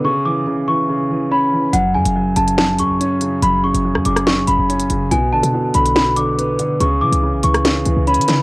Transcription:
<<
  \new Staff \with { instrumentName = "Celesta" } { \time 4/4 \key fis \minor \tempo 4 = 142 cis'''8 d'''4 cis'''4. b''4 | fis''8 gis''4 a''8 a''8 cis'''4. | b''8 cis'''4 d'''8 cis'''8 b''4. | gis''8 a''4 b''8 b''8 d'''4. |
cis'''8 d'''4 cis'''4. b''4 | }
  \new Staff \with { instrumentName = "Grand piano" } { \clef bass \time 4/4 \key fis \minor cis8 e8 cis8 e8 cis8 e8 cis'8 e8 | fis,8 cis8 fis,8 cis8 fis,8 cis8 cis'8 cis8 | fis,8 cis8 fis,8 cis8 fis,8 cis8 cis'8 cis8 | b,8 d8 b,8 d8 b,8 d8 b8 d8 |
cis8 e8 cis8 e8 cis8 e8 cis'8 e8 | }
  \new Staff \with { instrumentName = "808-style bass" } { \clef bass \time 4/4 \key fis \minor r1 | fis,,8 fis,16 fis,,8. fis,,4 fis,16 fis,,16 r4 | fis,,8. fis,,8 fis,16 fis,,4 fis,,16 fis,,8. fis,,8 | b,,8 a,,16 b,8. b,,2 d8 |
cis,8 cis16 cis,8 b,,16 cis,4 cis,16 cis,8 e16 cis8 | }
  \new DrumStaff \with { instrumentName = "Drums" } \drummode { \time 4/4 r4 r4 r4 r4 | hh8. hh16 r8 hh16 hh16 sn8 hh8 hh8 hh8 | hh8. hh16 r16 ss16 hh16 <hh ss>16 sn8 hh8 hh16 hh16 hh8 | hh8. hh16 r8 hh16 hh16 sn8 hh8 hh8 hh8 |
hh8. hh16 r8 hh16 <hh ss>16 <hh sn>8 hh8 \tuplet 3/2 { hh16 hh16 hh16 <hh sn>16 r16 r16 } | }
>>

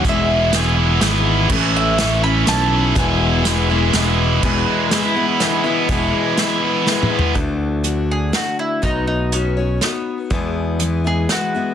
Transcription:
<<
  \new Staff \with { instrumentName = "Mandolin" } { \time 3/4 \key e \major \tempo 4 = 122 e''4 gis''4 r4 | r8 e''4 b''8 a''4 | gis''2~ gis''8 r8 | r2. |
r2. | r4. gis'8 fis'8 e'8 | dis'8 dis'8 cis'4 b8. r16 | r4. gis'8 fis'4 | }
  \new Staff \with { instrumentName = "Pedal steel guitar" } { \time 3/4 \key e \major r2. | r2. | r2. | b'4 gis'16 e'8 e'4~ e'16 |
e'2~ e'8. r16 | r2. | r2. | r2. | }
  \new Staff \with { instrumentName = "Steel-string acoustic guitar" } { \time 3/4 \key e \major <e, b, e gis b e'>4 <e gis b e'>4 <e gis b e'>4 | <a, e a cis' e'>4 <e a cis' e'>8 <a cis' e'>8 <e a cis' e'>4 | <e, b, e gis b e'>4 <gis b e'>8 <e gis b e'>8 <e gis b e'>4 | <e, b, e gis b e'>4 <e gis b e'>8 <e gis b e'>8 <e gis b e'>8 <e gis b e'>8 |
<e, b, e gis b e'>4 <e gis b e'>4 <e gis b e'>4 | <d a d' fis'>4 <d a d' fis'>4 <d a d' fis'>4 | <b dis' fis' cis''>4 <b dis' fis' cis''>8 <dis' fis' cis''>8 <b dis' fis' cis''>4 | <e, b, e gis b e'>4 <e gis b e'>8 <e gis b e'>8 <e gis b e'>8 <e gis b e'>8 | }
  \new Staff \with { instrumentName = "Overdriven electric guitar" } { \time 3/4 \key e \major <e, b, e gis b e'>4 <e gis b e'>8 <e gis b e'>8 <e gis b e'>4 | <a, e a cis' e'>4 <e a cis' e'>8 <a cis' e'>8 <e a cis' e'>4 | <e, b, e gis b e'>4 <e gis b e'>8 <e gis b e'>8 <e gis b e'>4 | e,8 gis8 e'8 b8 gis8 b8 |
e,8 gis8 e'8 b8 gis8 b8 | r2. | r2. | r2. | }
  \new Staff \with { instrumentName = "Picked electric bass" } { \clef bass \time 3/4 \key e \major r2 gis,,4 | a,,2 b,,4 | r2 e,,4 | e,,8 r2 r8 |
e,,8 r2 r8 | d,2 r4 | b,,2 r4 | e,2 r4 | }
  \new DrumStaff \with { instrumentName = "Drums" } \drummode { \time 3/4 <hh bd>4 <hh sn>4 <hh sn>4 | <cymc bd>4 <hh sn>4 <hh sn>4 | <hh bd>4 <hh sn>4 <hh sn>4 | <cymc bd>4 <hh sn>4 <hh sn>4 |
<hh bd>4 <hh sn>4 \tuplet 3/2 { sn8 toml8 tomfh8 } | <hh bd>4 hh4 <hh sn>4 | <hh bd>4 hh4 <hh sn>4 | <hh bd>4 hh4 <hh sn>4 | }
>>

